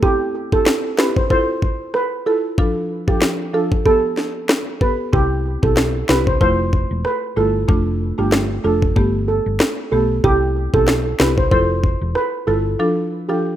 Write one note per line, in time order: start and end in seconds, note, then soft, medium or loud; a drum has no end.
0.03 0.48 C4 medium
0.03 0.48 E4 medium
0.03 0.14 G4 loud
0.03 0.48 G4 loud
0.03 kick loud
0.52 0.67 C4 medium
0.52 0.67 E4 medium
0.52 0.67 G4 medium
0.52 0.62 A4 medium
0.52 kick medium
0.66 snare loud
0.98 1.16 C4 medium
0.98 1.16 E4 medium
0.98 1.17 G4 medium
0.98 1.10 B4 medium
0.98 snare loud
1.16 1.26 C5 medium
1.16 kick loud
1.30 2.19 E4 medium
1.30 2.19 F4 medium
1.30 2.20 A4 loud
1.30 1.77 C5 loud
1.30 kick medium
1.62 kick medium
1.94 2.06 B4 medium
1.94 cross-stick medium
2.26 2.44 E4 medium
2.26 2.44 F4 medium
2.26 2.38 A4 medium
2.26 2.45 A4 medium
2.58 3.04 F3 medium
2.58 3.04 D4 medium
2.58 3.04 F4 medium
2.58 3.04 A4 loud
2.58 kick loud
3.08 3.22 F3 medium
3.08 3.22 D4 medium
3.08 3.22 F4 medium
3.08 3.17 G4 medium
3.08 3.22 A4 medium
3.08 kick loud
3.22 snare loud
3.54 3.72 F3 medium
3.54 3.72 D4 medium
3.54 3.72 F4 medium
3.54 3.66 A4 medium
3.54 3.72 A4 medium
3.72 kick loud
3.86 4.75 B3 medium
3.86 4.75 G4 medium
3.86 4.32 A4 medium
3.86 4.75 A4 medium
3.86 kick medium
4.17 snare medium
4.49 cross-stick medium
4.49 snare loud
4.81 4.99 B3 medium
4.81 4.99 G4 medium
4.81 4.99 A4 medium
4.81 4.93 B4 medium
4.81 kick medium
5.13 5.56 C2 loud
5.13 5.58 C4 medium
5.13 5.59 E4 medium
5.13 5.25 G4 medium
5.13 5.59 G4 loud
5.13 kick loud
5.63 6.02 B1 medium
5.63 5.77 C4 medium
5.63 5.77 E4 medium
5.63 5.77 G4 medium
5.63 5.73 A4 medium
5.63 kick loud
5.77 snare loud
6.09 6.36 C2 medium
6.09 6.27 C4 medium
6.09 6.27 E4 medium
6.09 6.27 G4 medium
6.09 6.21 B4 medium
6.09 snare loud
6.27 6.36 C5 medium
6.27 kick medium
6.41 6.83 F1 loud
6.41 7.30 A3 medium
6.41 7.30 E4 medium
6.41 7.30 F4 medium
6.41 6.88 C5 loud
6.41 kick medium
6.73 kick medium
6.91 7.03 E1 medium
7.05 7.17 B4 medium
7.05 cross-stick medium
7.36 7.64 G1 medium
7.36 7.55 A3 medium
7.36 7.55 E4 medium
7.36 7.55 F4 medium
7.36 7.49 A4 medium
7.68 8.11 F1 loud
7.68 8.14 A3 medium
7.68 8.14 D4 medium
7.68 8.14 F4 loud
7.68 kick loud
8.18 8.57 G1 medium
8.18 8.32 A3 medium
8.18 8.33 D4 medium
8.18 8.33 F4 medium
8.18 8.28 G4 medium
8.32 snare loud
8.64 8.91 F1 medium
8.64 8.82 A3 medium
8.64 8.82 D4 medium
8.64 8.82 F4 medium
8.64 8.76 A4 medium
8.82 kick medium
8.96 9.39 G1 loud
8.96 9.85 A3 medium
8.96 9.85 B3 medium
8.96 9.86 G4 loud
8.96 kick medium
9.28 9.40 A4 medium
9.46 9.58 G1 medium
9.60 cross-stick medium
9.60 snare loud
9.92 10.19 B1 medium
9.92 10.10 A3 medium
9.92 10.10 B3 medium
9.92 10.10 G4 medium
9.92 10.03 A4 medium
10.24 10.66 C2 loud
10.24 10.69 C4 medium
10.24 10.70 E4 medium
10.24 10.36 G4 loud
10.24 10.70 G4 loud
10.24 kick loud
10.74 11.13 B1 medium
10.74 10.88 C4 medium
10.74 10.88 E4 medium
10.74 10.88 G4 medium
10.74 10.83 A4 medium
10.74 kick loud
10.88 snare loud
11.20 11.47 C2 medium
11.20 11.38 C4 medium
11.20 11.38 E4 medium
11.20 11.38 G4 medium
11.20 11.32 B4 medium
11.20 snare loud
11.38 11.47 C5 medium
11.38 kick loud
11.51 11.94 F1 loud
11.51 12.41 E4 medium
11.51 12.41 F4 medium
11.51 12.41 A4 loud
11.51 11.98 C5 loud
11.51 kick medium
11.84 kick medium
12.01 12.13 E1 medium
12.15 12.27 B4 medium
12.15 cross-stick medium
12.47 12.74 G1 medium
12.47 12.65 E4 medium
12.47 12.65 F4 medium
12.47 12.59 A4 medium
12.47 12.66 A4 medium
12.79 13.25 F3 medium
12.79 13.25 D4 medium
12.79 13.25 F4 medium
12.79 13.25 A4 loud
13.29 13.43 F3 medium
13.29 13.43 D4 medium
13.29 13.43 F4 medium
13.29 13.38 G4 medium
13.29 13.44 A4 medium